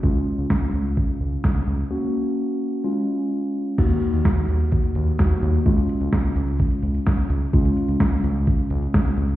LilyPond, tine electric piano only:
\new Staff \with { instrumentName = "Tine electric piano" } { \time 4/4 \key cis \mixolydian \tempo 4 = 128 <gis cis' eis'>1 | <ais cis' fis'>2 <gis cis' eis'>2 | <ais dis' fis'>2. <ais dis' fis'>4 | <gis cis' eis'>1 |
<gis cis' eis'>1 | }